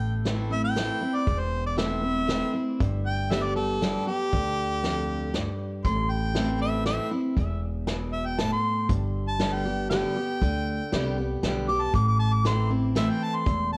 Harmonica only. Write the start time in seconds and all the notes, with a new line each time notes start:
Already playing: G5
0.52 E5
0.64 G5
1.15 D5
1.40 C5
1.67 D5
1.78 E5
3.06 G5
3.31 E5
3.43 D5
3.56 A4
4.07 G4
5.85 C6
6.10 G5
6.61 E5
6.86 E5
8.13 E5
8.26 G5
8.39 A5
8.52 C6
9.28 A5
9.53 G5
9.90 G5
11.68 D6
11.82 A5
11.95 D6
12.08 D6
12.19 A5
12.33 D6
12.46 C6
12.97 E5
13.10 G5
13.23 A5
13.35 C6
13.73 A5